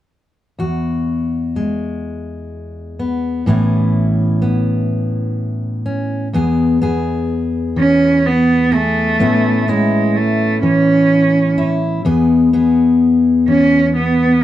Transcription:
0.59 3.46 E2 soft
0.59 3.40 F#4 soft
1.56 3.41 G#3 soft
2.99 3.48 B3 soft
3.46 6.33 A2 medium
3.46 6.27 E3 soft
3.46 4.41 B3 soft
3.46 5.84 C#4 soft
3.46 6.35 E4 medium
4.42 6.27 B3 soft
5.86 6.27 C#4 soft
6.33 9.20 E2 medium
6.33 6.81 B3 soft
6.33 6.81 G#4 soft
6.82 9.20 B3 soft
6.82 8.71 G#4 soft
7.76 10.62 E3 soft
7.76 8.27 C#4 medium
8.26 8.75 B3 medium
8.72 9.70 A3 medium
8.72 9.14 G#4 soft
9.19 12.05 A2 medium
9.19 9.67 B3 soft
9.19 9.68 C#4 soft
9.19 9.69 E4 medium
9.68 10.17 G#3 medium
9.68 12.05 B3 soft
9.68 12.00 C#4 soft
9.68 11.56 E4 soft
10.16 10.63 A3 medium
10.63 11.99 E3 soft
10.63 11.66 C#4 medium
11.58 12.05 E4 medium
12.05 14.44 E2 medium
12.05 12.53 B3 medium
12.05 12.53 G#4 medium
12.53 14.44 B3 soft
12.53 14.42 G#4 medium
13.48 14.44 E3 soft
13.48 13.92 C#4 medium
13.96 14.44 B3 medium

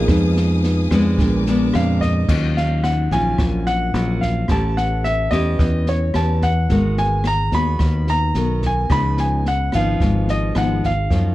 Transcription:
0.00 0.11 F#3 soft
0.00 0.88 B3 medium
0.00 0.11 C#4 soft
0.00 0.88 D#4 medium
0.00 0.11 F4 medium
0.00 0.88 G#4 medium
0.00 0.11 A#4 medium
0.00 0.11 D#5 medium
0.00 0.11 F5 loud
0.00 1.16 F5 medium
0.00 1.17 D#6 medium
0.08 0.87 F2 loud
0.08 0.92 F3 medium
0.08 0.87 G#3 soft
0.08 0.88 B3 soft
0.08 0.88 D#4 medium
0.08 1.17 B4 medium
0.08 2.27 G#5 medium
0.08 kick medium
0.08 cross-stick medium
0.08 snare soft
0.12 0.89 B4 medium
0.36 snare soft
0.63 snare soft
0.91 1.17 F2 medium
0.91 1.43 G#3 medium
0.91 1.43 B3 medium
0.91 1.43 D4 medium
0.91 kick soft
0.91 cross-stick medium
0.91 snare soft
1.18 1.70 A#1 medium
1.18 2.27 A#2 medium
1.18 1.97 G#3 soft
1.18 1.98 B3 soft
1.18 1.98 D4 soft
1.18 2.27 B4 medium
1.18 2.28 A#5 medium
1.18 2.27 D6 medium
1.18 kick medium
1.18 snare soft
1.46 2.25 G#3 medium
1.46 2.26 B3 medium
1.46 2.26 D4 medium
1.46 snare soft
1.74 2.26 F2 loud
1.74 2.03 F5 medium
1.74 cross-stick medium
1.74 snare soft
2.01 2.52 D#5 medium
2.01 kick soft
2.01 snare soft
2.29 3.07 D#2 loud
2.29 3.37 D#3 medium
2.29 3.07 F#3 soft
2.29 3.08 C#4 soft
2.29 3.08 F4 medium
2.29 kick medium
2.29 snare soft
2.29 crash medium
2.57 2.85 F5 medium
2.57 snare soft
2.83 3.12 F#5 medium
2.83 cross-stick medium
2.83 snare soft
3.11 3.37 A#1 medium
3.11 3.90 F#3 medium
3.11 3.90 C#4 medium
3.11 3.91 F4 medium
3.11 3.63 G#5 loud
3.11 kick soft
3.11 snare soft
3.38 3.90 A#1 medium
3.38 4.47 A#2 medium
3.38 kick medium
3.38 cross-stick medium
3.38 snare soft
3.66 4.24 F#5 loud
3.66 snare soft
3.94 4.45 A#1 medium
3.94 4.45 F#3 medium
3.94 4.45 C#4 medium
3.94 4.45 F4 medium
3.94 snare soft
4.21 4.47 F5 medium
4.21 kick soft
4.21 snare soft
4.48 5.28 A1 medium
4.48 5.57 A3 medium
4.48 5.28 C#4 medium
4.48 5.28 G4 medium
4.48 5.28 B4 medium
4.48 4.79 A5 medium
4.48 kick medium
4.48 cross-stick medium
4.48 snare soft
4.77 5.05 F#5 medium
4.77 snare soft
5.04 5.33 E5 medium
5.04 snare soft
5.31 5.57 E2 medium
5.31 6.11 C#4 medium
5.31 6.11 G4 medium
5.31 6.11 B4 medium
5.31 5.88 D#5 loud
5.31 kick soft
5.31 cross-stick medium
5.31 snare soft
5.59 6.11 E2 medium
5.59 6.67 E3 medium
5.59 kick medium
5.59 snare soft
5.86 6.16 C#5 medium
5.86 snare soft
6.14 6.66 E2 medium
6.14 6.51 C#4 medium
6.14 6.51 G4 medium
6.14 6.51 B4 medium
6.14 6.44 A5 medium
6.14 cross-stick medium
6.14 snare soft
6.41 6.94 F#5 medium
6.41 kick soft
6.41 snare soft
6.69 7.49 G#1 loud
6.69 7.78 G#3 medium
6.69 7.25 B3 medium
6.69 7.25 F#4 medium
6.69 7.25 A#4 medium
6.69 kick medium
6.69 snare soft
6.97 7.26 G#5 medium
6.97 snare soft
7.24 7.52 A#5 loud
7.24 cross-stick medium
7.24 snare soft
7.52 7.78 D#2 medium
7.52 8.31 B3 medium
7.52 8.32 F#4 medium
7.52 8.10 B5 loud
7.52 kick soft
7.52 snare soft
7.79 8.31 D#2 medium
7.79 8.89 D#3 medium
7.79 kick medium
7.79 cross-stick medium
7.79 snare soft
8.07 8.60 A#5 loud
8.07 snare soft
8.34 8.87 B1 medium
8.34 8.86 B3 medium
8.34 8.87 F#4 medium
8.34 8.87 A#4 medium
8.34 snare soft
8.62 kick soft
8.62 snare soft
8.66 8.93 G#5 medium
8.90 9.69 C#2 loud
8.90 9.98 C#3 medium
8.90 9.45 F3 soft
8.90 9.46 B3 medium
8.90 9.46 D#4 medium
8.90 9.20 B5 loud
8.90 kick medium
8.90 cross-stick medium
8.90 snare soft
9.17 9.47 G#5 medium
9.17 snare soft
9.45 9.72 F#5 medium
9.45 snare soft
9.72 9.99 G#1 medium
9.72 10.52 F3 medium
9.72 10.52 B3 medium
9.72 10.53 D#4 medium
9.72 10.31 F5 medium
9.72 kick soft
9.72 cross-stick medium
9.72 snare soft
10.00 10.52 G#1 medium
10.00 11.08 G#2 medium
10.00 kick medium
10.00 snare soft
10.28 10.58 D#5 medium
10.28 snare soft
10.55 11.07 G#1 medium
10.55 10.91 F3 medium
10.55 10.91 B3 medium
10.55 10.92 D#4 medium
10.55 10.85 F#5 medium
10.55 cross-stick medium
10.55 snare soft
10.83 11.35 F5 medium
10.83 kick soft
10.83 snare soft
11.10 11.35 F#2 medium
11.10 11.35 F#2 soft
11.10 11.35 F3 medium
11.10 11.35 A#3 medium
11.10 11.35 D#4 medium
11.10 kick medium
11.10 snare soft

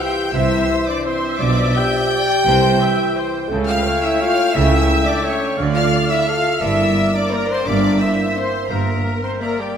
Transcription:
0.00 0.32 E3 medium
0.00 0.35 G4 loud
0.00 0.33 C5 medium
0.00 0.34 E5 medium
0.00 0.33 G5 loud
0.00 0.34 G5 loud
0.00 0.34 G6 loud
0.32 0.63 C2 loud
0.32 0.63 C3 medium
0.32 1.03 E3 medium
0.32 0.88 E4 loud
0.32 1.04 C5 medium
0.32 1.04 C5 loud
0.32 0.85 E5 loud
0.32 0.88 E5 medium
0.32 0.88 E5 loud
0.32 0.87 E6 loud
0.86 1.06 D4 medium
0.86 1.06 D5 loud
0.86 1.05 D5 medium
0.86 0.96 D5 loud
0.86 1.05 D6 loud
1.04 1.39 E3 medium
1.04 1.41 C4 loud
1.04 1.38 C5 medium
1.04 1.41 C5 loud
1.04 1.39 C5 medium
1.04 2.12 E5 loud
1.04 1.39 C6 loud
1.38 1.70 B1 loud
1.38 1.70 B2 loud
1.38 1.75 F3 medium
1.38 1.76 D4 loud
1.38 1.76 D5 medium
1.38 1.76 D5 loud
1.38 1.75 D5 medium
1.38 1.77 D5 loud
1.38 1.77 D6 loud
1.74 2.22 F3 medium
1.74 3.51 G4 loud
1.74 2.22 D5 medium
1.74 3.46 G5 loud
1.74 3.50 G5 loud
1.74 3.47 G5 loud
1.74 3.50 G6 loud
2.12 2.46 D5 loud
2.46 2.75 C2 loud
2.46 2.75 C3 loud
2.46 3.51 E3 medium
2.46 2.80 C5 loud
2.46 3.46 G5 medium
2.80 3.16 E5 loud
3.16 3.50 C5 loud
3.49 3.79 C#2 loud
3.49 3.79 C#3 loud
3.49 4.54 A3 medium
3.49 3.84 A4 medium
3.49 4.52 G5 loud
3.66 4.00 F4 loud
3.66 4.00 F5 loud
3.66 4.01 F5 loud
3.66 4.05 F5 loud
3.66 4.01 F6 loud
3.85 4.55 C#5 loud
4.03 4.21 E4 medium
4.03 4.21 E5 medium
4.03 4.21 E5 loud
4.03 4.21 E6 loud
4.20 4.55 F4 loud
4.20 4.52 F5 loud
4.20 4.53 F5 loud
4.20 4.54 F5 loud
4.20 4.54 F6 loud
4.53 4.83 C#2 loud
4.53 4.83 C#3 loud
4.53 5.22 A3 medium
4.53 5.06 E4 loud
4.53 5.07 E5 loud
4.53 5.06 E5 loud
4.53 5.58 E5 loud
4.53 5.23 G5 medium
4.53 5.06 E6 loud
5.05 5.24 D4 loud
5.05 5.25 D5 loud
5.05 5.24 D5 medium
5.05 5.24 D5 loud
5.05 5.25 D6 loud
5.23 5.57 A3 medium
5.23 5.57 C#4 medium
5.23 5.58 C#5 loud
5.23 5.57 C#5 medium
5.23 5.58 C#5 medium
5.23 5.56 G5 medium
5.23 5.58 C#6 loud
5.57 5.86 D2 loud
5.57 5.86 D3 medium
5.57 6.26 A3 medium
5.57 6.26 D5 loud
5.57 6.26 F5 medium
5.74 6.07 F4 loud
5.74 6.07 F5 loud
5.74 6.11 F5 loud
5.74 6.07 F5 loud
5.74 6.08 F6 loud
6.09 6.27 E4 loud
6.09 6.27 E5 medium
6.09 6.27 E5 loud
6.09 6.28 E5 loud
6.09 6.28 E6 loud
6.27 6.60 A3 medium
6.27 6.61 F4 loud
6.27 6.96 A4 medium
6.27 6.59 F5 loud
6.27 6.60 F5 loud
6.27 6.61 F5 loud
6.27 6.63 F5 medium
6.27 6.61 F6 loud
6.60 6.90 G1 loud
6.60 6.90 G2 medium
6.60 7.30 A#3 medium
6.60 7.14 E4 loud
6.60 7.32 D5 medium
6.60 7.16 E5 loud
6.60 7.14 E5 loud
6.60 7.14 E6 loud
6.95 7.32 A#4 medium
7.13 7.32 D4 loud
7.13 7.32 D5 medium
7.13 7.32 D5 loud
7.13 7.35 D5 loud
7.13 7.33 D6 loud
7.32 7.49 A#3 loud
7.32 7.65 A#3 medium
7.32 7.49 A#4 loud
7.32 7.50 A#4 loud
7.32 7.51 A#4 loud
7.32 7.67 D5 medium
7.32 7.66 D5 medium
7.32 7.50 A#5 loud
7.48 7.66 C4 loud
7.48 7.65 C5 medium
7.48 7.68 C5 loud
7.48 7.66 C5 loud
7.48 7.66 C6 loud
7.65 7.95 G1 loud
7.65 7.94 G2 medium
7.65 7.99 A#3 medium
7.65 8.00 D4 loud
7.65 8.00 A#4 medium
7.65 7.99 D5 loud
7.65 8.02 D5 loud
7.65 8.00 D5 loud
7.65 8.00 E5 medium
7.65 8.00 D6 loud
7.99 8.69 A#3 medium
7.99 8.37 E4 medium
7.99 8.70 C5 medium
7.99 8.36 E5 medium
7.99 8.69 E5 medium
7.99 8.36 E5 medium
7.99 8.38 E5 medium
7.99 8.36 E6 loud
8.35 8.70 C4 loud
8.35 8.70 C5 medium
8.35 8.70 C5 loud
8.35 8.70 C6 loud
8.69 8.99 G1 medium
8.69 8.99 G2 medium
8.69 9.14 A#3 medium
8.69 9.22 A#3 medium
8.69 9.23 A#4 medium
8.69 9.40 A#4 medium
8.69 9.25 A#4 medium
8.69 9.14 E5 medium
8.69 9.23 A#5 medium
9.22 9.40 C4 medium
9.22 9.41 C5 medium
9.22 9.31 C6 medium
9.40 9.77 A#3 medium
9.40 9.59 A#3 medium
9.40 9.58 A#4 medium
9.40 9.60 A#4 medium
9.40 9.62 A#4 medium
9.40 9.77 D5 medium
9.40 9.62 E5 medium
9.40 9.59 A#5 medium
9.58 9.77 G3 medium
9.58 9.76 G4 medium
9.58 9.77 G4 medium
9.58 9.77 D5 medium
9.58 9.77 G5 medium

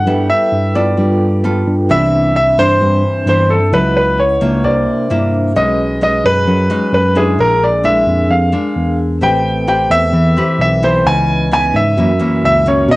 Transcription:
0.00 0.03 E4 soft
0.00 0.94 E4 medium
0.00 0.05 A4 soft
0.00 0.07 B4 soft
0.00 0.26 F#5 medium
0.00 0.09 G5 soft
0.05 0.28 G2 medium
0.05 0.96 G3 medium
0.05 0.52 B3 medium
0.05 0.52 E4 medium
0.05 0.95 A4 soft
0.05 0.52 A4 medium
0.05 0.96 B4 soft
0.05 0.97 G5 medium
0.30 0.76 E5 medium
0.52 0.94 G2 medium
0.75 1.40 B3 medium
0.75 1.40 F4 medium
0.75 1.40 A4 medium
0.75 1.40 D5 medium
0.95 1.62 G2 medium
0.95 1.87 G3 medium
0.95 1.86 F4 soft
0.95 1.87 A4 soft
0.99 1.88 B4 soft
0.99 1.89 G5 soft
1.44 1.73 B3 medium
1.44 1.73 F4 medium
1.44 1.74 A4 medium
1.67 1.88 G2 medium
1.87 2.54 C2 medium
1.87 2.78 C3 medium
1.87 2.35 E3 soft
1.87 2.35 B3 soft
1.87 3.69 C4 soft
1.87 3.67 D4 soft
1.87 2.35 D4 medium
1.87 3.68 B5 soft
1.91 2.35 E5 loud
2.36 2.59 E5 medium
2.58 2.79 G2 medium
2.58 3.23 E3 medium
2.58 3.23 D4 medium
2.58 3.27 C5 loud
2.81 3.02 G2 medium
2.81 3.70 G2 medium
3.27 3.69 G2 medium
3.27 3.56 E3 medium
3.27 3.57 B3 medium
3.27 3.57 D4 medium
3.27 3.49 C5 medium
3.50 3.73 A4 medium
3.70 4.37 C#2 medium
3.70 4.62 C#3 medium
3.70 4.18 F#3 medium
3.70 4.18 B3 medium
3.70 4.61 E4 soft
3.70 4.18 E4 medium
3.70 4.62 B4 soft
3.70 4.63 D#5 soft
3.74 3.95 B4 medium
3.74 4.64 F#5 soft
3.97 4.17 B4 medium
4.20 4.66 C#5 medium
4.41 4.63 C#2 medium
4.41 5.06 A#3 medium
4.41 5.06 D4 medium
4.41 5.07 E4 medium
4.61 4.85 C2 medium
4.61 5.53 C3 medium
4.61 5.52 D4 soft
4.61 5.53 A#4 soft
4.61 5.29 D5 medium
4.65 5.54 C5 soft
4.65 5.55 E5 medium
5.10 5.53 G2 medium
5.10 5.52 A#3 medium
5.10 5.52 D4 medium
5.10 5.52 E4 medium
5.52 6.20 B1 medium
5.52 6.45 B2 medium
5.52 5.98 G#3 medium
5.52 7.33 C#4 soft
5.52 7.34 G#4 soft
5.52 7.35 B4 soft
5.56 5.98 C#4 medium
5.56 5.98 D#4 medium
5.56 5.99 D#5 medium
5.56 7.36 D#5 soft
6.01 6.66 G#3 medium
6.01 6.67 C#4 medium
6.01 6.67 D#4 medium
6.01 6.24 D#5 medium
6.24 6.46 F#2 medium
6.24 6.93 B4 loud
6.47 6.68 F#2 medium
6.47 7.36 F#3 medium
6.70 7.12 G#3 medium
6.70 7.12 C#4 medium
6.70 7.13 D#4 medium
6.93 7.35 F#2 medium
6.93 7.17 B4 medium
7.15 7.81 G#3 medium
7.15 7.81 D4 medium
7.15 7.81 E4 medium
7.15 7.40 G#4 medium
7.36 8.03 A#1 medium
7.36 8.28 A#2 medium
7.36 9.17 D4 soft
7.36 9.18 G#4 soft
7.40 9.19 A#4 soft
7.40 7.63 A#4 loud
7.40 9.20 E6 medium
7.63 7.86 D5 medium
7.83 8.49 G#3 medium
7.83 8.49 D4 medium
7.83 8.49 E4 medium
7.83 8.32 E5 medium
8.07 8.28 F2 medium
8.30 8.51 F2 medium
8.30 8.95 F5 medium
8.52 9.18 G#3 medium
8.52 9.18 D4 medium
8.76 9.19 E2 medium
9.19 9.86 A1 medium
9.19 10.11 A3 medium
9.19 11.00 C4 soft
9.19 9.64 C4 medium
9.19 9.64 G4 medium
9.19 11.01 A4 soft
9.19 9.64 B4 medium
9.23 11.02 B4 soft
9.23 9.67 G5 loud
9.23 11.03 G5 soft
9.67 10.13 C4 medium
9.67 10.13 G4 medium
9.67 10.13 B4 medium
9.67 9.92 G5 medium
9.90 10.12 E2 medium
9.90 10.60 E5 loud
10.13 10.34 E2 medium
10.13 10.81 E3 medium
10.37 10.79 C4 medium
10.37 10.79 G4 medium
10.37 10.79 B4 medium
10.59 11.01 B1 medium
10.59 10.84 E5 loud
10.83 11.47 E3 medium
10.83 11.48 B3 medium
10.83 11.48 D#4 medium
10.83 11.07 C5 medium
11.02 11.70 C#2 medium
11.02 11.95 C#3 medium
11.02 11.93 C#4 soft
11.07 11.96 B4 soft
11.07 11.96 D#5 medium
11.07 11.52 G#5 loud
11.51 11.82 E3 medium
11.51 11.82 B3 medium
11.51 11.82 D#4 medium
11.51 11.73 G#5 loud
11.74 11.95 G#2 medium
11.74 12.44 E5 loud
11.94 12.86 F#2 medium
11.94 12.10 E3 medium
11.94 12.85 C#4 soft
11.94 12.86 F#4 soft
11.98 12.19 F#2 medium
11.98 12.11 A#3 medium
11.98 12.11 C#4 medium
11.98 12.87 A#4 soft
11.98 12.88 E5 medium
12.19 12.62 E3 medium
12.19 12.62 A#3 medium
12.19 12.62 C#4 medium
12.43 12.85 C#2 medium
12.43 12.65 E5 loud
12.66 12.96 D#3 medium
12.66 12.96 A#3 medium
12.66 12.96 C#4 medium
12.66 12.90 C#5 medium
12.86 12.96 B2 loud
12.86 12.96 B2 medium
12.86 12.96 B3 soft
12.86 12.96 C#4 soft
12.86 12.96 A#5 soft
12.91 12.96 D#5 loud

